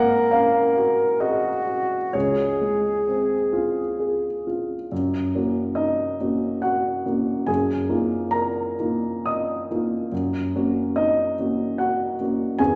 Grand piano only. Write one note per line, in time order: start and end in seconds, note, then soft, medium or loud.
0.00 2.11 G#2 medium
0.00 0.58 A#3 soft
0.00 0.31 F5 medium
0.00 0.31 F#5 medium
0.00 2.17 G#5 medium
0.31 1.03 C#4 soft
0.31 1.21 F5 medium
0.77 1.49 F#4 soft
1.20 1.95 G#4 soft
1.20 2.14 D#5 medium
1.67 2.14 F#4 soft
2.13 4.88 C#2 soft
2.13 4.45 C#5 medium
2.61 3.34 G#3 soft
3.07 3.80 C4 soft
3.53 4.27 F4 soft
3.99 4.74 G#4 soft
4.47 4.92 F4 soft
4.92 5.33 F#2 soft
5.35 6.16 A#3 soft
5.35 6.16 C#4 soft
5.35 6.16 F#4 soft
5.75 6.59 D#4 soft
5.75 6.62 D#5 medium
6.20 7.03 A#3 soft
6.20 7.03 C#4 soft
6.20 6.61 F#4 soft
6.62 7.05 F#4 medium
6.62 7.48 F#5 medium
7.06 7.44 A#3 soft
7.06 7.44 C#4 soft
7.06 7.44 F#4 soft
7.46 7.88 F#2 medium
7.46 8.28 G#4 medium
7.46 8.31 G#5 medium
7.89 8.74 A#3 soft
7.89 8.74 D#4 soft
7.89 8.75 F4 soft
8.31 9.22 A#4 soft
8.31 9.26 A#5 medium
8.79 9.66 A#3 soft
8.79 9.66 D#4 soft
8.79 9.67 F4 soft
9.26 10.08 D#5 soft
9.26 10.11 D#6 medium
9.71 10.08 A#3 soft
9.71 10.08 D#4 soft
9.71 10.09 F4 soft
10.12 10.53 F#2 medium
10.55 11.35 A#3 soft
10.55 11.35 C#4 soft
10.55 11.35 F#4 soft
10.96 11.75 D#4 soft
10.96 11.79 D#5 medium
11.39 12.16 A#3 soft
11.39 12.16 C#4 soft
11.39 11.78 F#4 soft
11.78 12.20 F#4 soft
11.78 12.59 F#5 medium
12.20 12.56 A#3 soft
12.20 12.56 C#4 soft
12.20 12.56 F#4 soft
12.59 12.75 E2 soft
12.59 12.75 G#4 medium
12.59 12.75 G#5 medium